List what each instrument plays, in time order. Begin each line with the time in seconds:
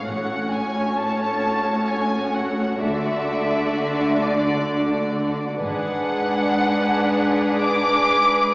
0.06 double bass section A1, cello section A2, viola section A3 C#4, violin section F#4 C#5 F#5
0.52 violin section G#5
0.99 violin section A5
1.88 violin section G#5
2.34 violin section F#5
2.80 double bass section D2, cello section D3, viola section D4, violin section D5 E5
4.22 violin section D5
5.62 double bass section G#1, cello section G#2, viola section G#3 D4, violin section G#4 B4 F#5
7.62 violin section D6